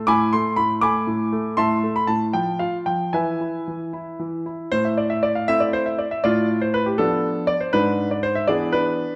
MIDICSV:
0, 0, Header, 1, 2, 480
1, 0, Start_track
1, 0, Key_signature, 0, "minor"
1, 0, Tempo, 501253
1, 77, Time_signature, 6, 3, 24, 8
1, 1997, Tempo, 525855
1, 4877, Tempo, 499168
1, 8642, End_track
2, 0, Start_track
2, 0, Title_t, "Grand piano"
2, 0, Program_c, 0, 0
2, 66, Note_on_c, 0, 86, 111
2, 72, Note_on_c, 0, 45, 77
2, 75, Note_on_c, 0, 83, 87
2, 78, Note_on_c, 0, 80, 89
2, 298, Note_off_c, 0, 83, 0
2, 299, Note_off_c, 0, 80, 0
2, 305, Note_off_c, 0, 45, 0
2, 310, Note_off_c, 0, 86, 0
2, 313, Note_on_c, 0, 84, 99
2, 317, Note_on_c, 0, 57, 65
2, 527, Note_off_c, 0, 84, 0
2, 540, Note_on_c, 0, 83, 95
2, 546, Note_off_c, 0, 57, 0
2, 551, Note_on_c, 0, 45, 64
2, 686, Note_off_c, 0, 83, 0
2, 780, Note_on_c, 0, 86, 103
2, 781, Note_off_c, 0, 45, 0
2, 787, Note_on_c, 0, 57, 62
2, 791, Note_on_c, 0, 83, 76
2, 793, Note_on_c, 0, 80, 78
2, 1019, Note_off_c, 0, 57, 0
2, 1026, Note_on_c, 0, 45, 66
2, 1259, Note_off_c, 0, 45, 0
2, 1268, Note_on_c, 0, 57, 63
2, 1466, Note_off_c, 0, 86, 0
2, 1472, Note_off_c, 0, 83, 0
2, 1473, Note_off_c, 0, 80, 0
2, 1502, Note_off_c, 0, 57, 0
2, 1503, Note_on_c, 0, 84, 105
2, 1508, Note_on_c, 0, 45, 75
2, 1512, Note_on_c, 0, 76, 79
2, 1513, Note_on_c, 0, 81, 79
2, 1724, Note_off_c, 0, 84, 0
2, 1745, Note_off_c, 0, 45, 0
2, 1755, Note_on_c, 0, 57, 59
2, 1851, Note_off_c, 0, 76, 0
2, 1852, Note_off_c, 0, 81, 0
2, 1875, Note_on_c, 0, 83, 89
2, 1986, Note_on_c, 0, 81, 90
2, 1992, Note_off_c, 0, 57, 0
2, 1992, Note_on_c, 0, 45, 58
2, 1998, Note_off_c, 0, 83, 0
2, 2131, Note_off_c, 0, 81, 0
2, 2224, Note_off_c, 0, 45, 0
2, 2224, Note_on_c, 0, 79, 86
2, 2228, Note_on_c, 0, 53, 63
2, 2443, Note_off_c, 0, 79, 0
2, 2461, Note_on_c, 0, 77, 85
2, 2463, Note_off_c, 0, 53, 0
2, 2467, Note_on_c, 0, 65, 58
2, 2609, Note_off_c, 0, 77, 0
2, 2703, Note_off_c, 0, 65, 0
2, 2704, Note_on_c, 0, 79, 79
2, 2711, Note_on_c, 0, 53, 50
2, 2926, Note_off_c, 0, 79, 0
2, 2947, Note_off_c, 0, 53, 0
2, 2950, Note_on_c, 0, 80, 85
2, 2956, Note_on_c, 0, 52, 64
2, 2961, Note_on_c, 0, 71, 60
2, 2961, Note_on_c, 0, 76, 63
2, 3193, Note_off_c, 0, 52, 0
2, 3203, Note_on_c, 0, 64, 52
2, 3439, Note_off_c, 0, 64, 0
2, 3448, Note_on_c, 0, 52, 50
2, 3681, Note_off_c, 0, 52, 0
2, 3681, Note_off_c, 0, 80, 0
2, 3683, Note_on_c, 0, 64, 54
2, 3919, Note_off_c, 0, 64, 0
2, 3922, Note_on_c, 0, 52, 56
2, 4137, Note_off_c, 0, 71, 0
2, 4137, Note_off_c, 0, 76, 0
2, 4161, Note_off_c, 0, 52, 0
2, 4163, Note_on_c, 0, 64, 50
2, 4398, Note_on_c, 0, 72, 110
2, 4399, Note_off_c, 0, 64, 0
2, 4404, Note_on_c, 0, 45, 75
2, 4519, Note_on_c, 0, 76, 72
2, 4521, Note_off_c, 0, 72, 0
2, 4635, Note_on_c, 0, 74, 75
2, 4640, Note_off_c, 0, 76, 0
2, 4747, Note_on_c, 0, 76, 79
2, 4756, Note_off_c, 0, 74, 0
2, 4865, Note_on_c, 0, 74, 93
2, 4869, Note_off_c, 0, 76, 0
2, 4986, Note_on_c, 0, 77, 76
2, 4991, Note_off_c, 0, 74, 0
2, 5092, Note_off_c, 0, 45, 0
2, 5108, Note_on_c, 0, 76, 108
2, 5112, Note_off_c, 0, 77, 0
2, 5112, Note_on_c, 0, 57, 58
2, 5118, Note_on_c, 0, 60, 57
2, 5119, Note_on_c, 0, 64, 63
2, 5225, Note_on_c, 0, 74, 83
2, 5233, Note_off_c, 0, 76, 0
2, 5350, Note_on_c, 0, 72, 98
2, 5351, Note_off_c, 0, 74, 0
2, 5471, Note_on_c, 0, 76, 74
2, 5474, Note_off_c, 0, 72, 0
2, 5592, Note_on_c, 0, 74, 71
2, 5594, Note_off_c, 0, 76, 0
2, 5633, Note_off_c, 0, 57, 0
2, 5637, Note_off_c, 0, 60, 0
2, 5638, Note_off_c, 0, 64, 0
2, 5715, Note_off_c, 0, 74, 0
2, 5715, Note_on_c, 0, 76, 77
2, 5835, Note_on_c, 0, 74, 102
2, 5837, Note_off_c, 0, 76, 0
2, 5843, Note_on_c, 0, 45, 78
2, 5845, Note_on_c, 0, 65, 82
2, 6053, Note_off_c, 0, 74, 0
2, 6179, Note_off_c, 0, 65, 0
2, 6199, Note_on_c, 0, 72, 88
2, 6317, Note_on_c, 0, 71, 93
2, 6320, Note_off_c, 0, 72, 0
2, 6433, Note_on_c, 0, 67, 72
2, 6439, Note_off_c, 0, 71, 0
2, 6541, Note_off_c, 0, 45, 0
2, 6550, Note_on_c, 0, 69, 100
2, 6556, Note_off_c, 0, 67, 0
2, 6560, Note_on_c, 0, 53, 56
2, 6561, Note_on_c, 0, 59, 59
2, 6562, Note_on_c, 0, 62, 73
2, 7007, Note_off_c, 0, 62, 0
2, 7022, Note_on_c, 0, 74, 99
2, 7034, Note_off_c, 0, 69, 0
2, 7078, Note_off_c, 0, 53, 0
2, 7079, Note_off_c, 0, 59, 0
2, 7151, Note_off_c, 0, 74, 0
2, 7151, Note_on_c, 0, 72, 75
2, 7269, Note_on_c, 0, 71, 100
2, 7276, Note_off_c, 0, 72, 0
2, 7276, Note_on_c, 0, 44, 77
2, 7279, Note_on_c, 0, 62, 78
2, 7599, Note_off_c, 0, 71, 0
2, 7615, Note_off_c, 0, 62, 0
2, 7637, Note_on_c, 0, 74, 74
2, 7751, Note_on_c, 0, 72, 95
2, 7759, Note_off_c, 0, 74, 0
2, 7871, Note_on_c, 0, 76, 82
2, 7876, Note_off_c, 0, 72, 0
2, 7976, Note_off_c, 0, 44, 0
2, 7987, Note_on_c, 0, 74, 101
2, 7994, Note_on_c, 0, 52, 59
2, 7995, Note_off_c, 0, 76, 0
2, 7999, Note_on_c, 0, 59, 59
2, 7999, Note_on_c, 0, 68, 80
2, 8003, Note_on_c, 0, 62, 66
2, 8220, Note_off_c, 0, 68, 0
2, 8225, Note_off_c, 0, 62, 0
2, 8227, Note_on_c, 0, 71, 100
2, 8231, Note_off_c, 0, 74, 0
2, 8239, Note_on_c, 0, 62, 75
2, 8512, Note_off_c, 0, 52, 0
2, 8515, Note_off_c, 0, 59, 0
2, 8642, Note_off_c, 0, 62, 0
2, 8642, Note_off_c, 0, 71, 0
2, 8642, End_track
0, 0, End_of_file